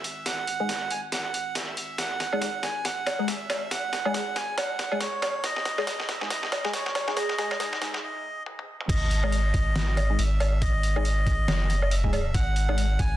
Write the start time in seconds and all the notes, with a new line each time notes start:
Already playing: G#1 E5
0.04 closed hi-hat
0.26 F#5, snare, closed hi-hat
0.47 closed hi-hat
0.60 G#3 D#4 G#4
0.69 snare, closed hi-hat
0.91 G#5, closed hi-hat
1.12 G#1 F#5, snare, closed hi-hat
1.34 closed hi-hat
1.55 E5, snare, closed hi-hat
1.77 closed hi-hat
1.98 G#1 F#5, snare, closed hi-hat
2.20 snare, closed hi-hat
2.33 G#3 D#4 G#4, low woodblock
2.42 snare, closed hi-hat
2.63 G#1 G#5, snare, closed hi-hat
2.85 F#5, snare, closed hi-hat
3.07 snare, closed hi-hat, low woodblock
3.19 G#3 D#4 G#4
3.28 G#1 E5, snare, closed hi-hat
3.50 snare, closed hi-hat, low woodblock
3.71 F#5, snare, closed hi-hat
3.93 snare, closed hi-hat
4.05 G#3 D#4 G#4, low woodblock
4.14 snare, closed hi-hat
4.36 G#5, snare, closed hi-hat
4.58 F#1 F#5, snare, closed hi-hat, low woodblock
4.79 snare, closed hi-hat
4.92 G#3 D#4 G#4, low woodblock
5.01 C#5, snare, closed hi-hat
5.22 snare, closed hi-hat, low woodblock
5.44 G#1 D#5, snare, closed hi-hat
5.56 snare
5.65 snare, closed hi-hat
5.78 G#3 D#4 G#4, snare, low woodblock
5.87 snare, closed hi-hat
6.00 snare
6.09 G#1 E5, snare, closed hi-hat
6.21 G#3 D#4 G#4, snare
6.30 D#5, snare, closed hi-hat
6.43 snare
6.52 snare, closed hi-hat, low woodblock
6.65 G#3 D#4 G#4, snare
6.73 G#1 C#5, snare, closed hi-hat
6.86 snare
6.95 snare, closed hi-hat, low woodblock
7.08 G#3 D#4 G#4, snare
7.17 G#3 D#4 G#4 D#5, snare, closed hi-hat
7.29 snare
7.38 G#3 D#4 G#4, snare, closed hi-hat
7.51 snare, low woodblock
7.60 G#3 D#4 G#4, snare, closed hi-hat
7.73 snare
7.81 G#3 D#4 G#4 E5, snare, closed hi-hat
7.94 snare
8.03 D#5
8.46 high tom
8.59 high tom
8.81 mid tom
8.89 G#1 D#5, kick, closed hi-hat, crash
9.11 closed hi-hat
9.23 G#3 D#4 G#4, low woodblock
9.32 closed hi-hat
9.54 G#1, kick, closed hi-hat
9.76 snare, closed hi-hat
9.97 closed hi-hat, low woodblock
10.10 G#3 D#4 G#4
10.19 G#1 E5, closed hi-hat
10.40 closed hi-hat, low woodblock
10.62 D#5, kick, closed hi-hat
10.83 closed hi-hat
10.96 G#3 D#4 G#4, low woodblock
11.05 closed hi-hat
11.26 kick, closed hi-hat
11.48 F#1, snare, closed hi-hat, low woodblock
11.70 closed hi-hat
11.82 low woodblock
11.91 E5, closed hi-hat
12.04 G#3 D#4 G#4, kick
12.13 closed hi-hat, low woodblock
12.34 G#1 F#5, kick, closed hi-hat
12.56 closed hi-hat
12.69 G#3 D#4 G#4, low woodblock
12.78 closed hi-hat
12.99 G#1 G#5, kick, closed hi-hat